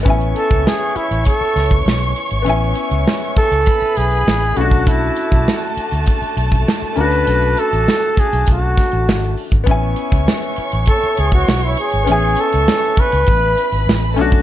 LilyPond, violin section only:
\new Staff \with { instrumentName = "Violin section" } { \time 4/4 \key a \major \tempo 4 = 100 <cis'' cis'''>1~ | <cis'' cis'''>2 <b' b''>4. <a a''>8~ | <a a''>1~ | <a a''>2.~ <a a''>8 r8 |
<cis'' cis'''>1~ | <cis'' cis'''>2 <b' b''>4. <a a''>8 | }